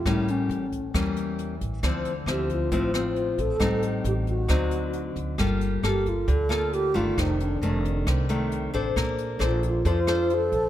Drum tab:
HH |xxxxxxxx|xxxxxxxx|xxxxxxxx|xxxxxxxx|
SD |r---r---|r-r--r--|r---r---|r-r--r--|
BD |o--oo--o|o--oo--o|o--oo--o|o--oo--o|

HH |xxxxxxxx|xxxxxxxx|
SD |r---r---|r-r--r--|
BD |o--oo--o|o--oo--o|